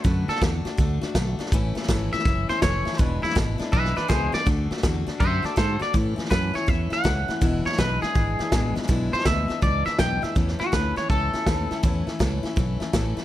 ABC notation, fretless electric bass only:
X:1
M:4/4
L:1/8
Q:"Swing" 1/4=163
K:Emix
V:1 name="Fretless electric bass" clef=bass
F,, z E,, z D,, z B,,, z | A,,, z G,,, z F,,, z =F,,, z | E,,, z G,,, z B,,, z C,, z | D,, z E,, z F,, z G,, z |
A,, z F,, z E,, z C,, z | E,,, z B,,, z G,,, z A,,, z | B,,, z D,, z C,, z B,,, z | [K:A] E,, z D,, z C,, z ^D,, z |
E,, z C,, z B,,, z A,,, z |]